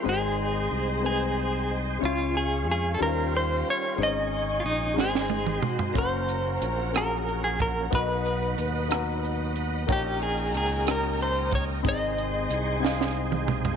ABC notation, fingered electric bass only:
X:1
M:6/8
L:1/8
Q:3/8=61
K:Abmix
V:1 name="Fingered electric bass" clef=bass
A,,,2 C,,4 | D,,2 F,, E,,2 z | A,,,2 B,,, A,,,2 z | G,,,2 B,,,4 |
_C,,2 E,,4 | B,,,2 D,,4 | A,,,2 C,,4 |]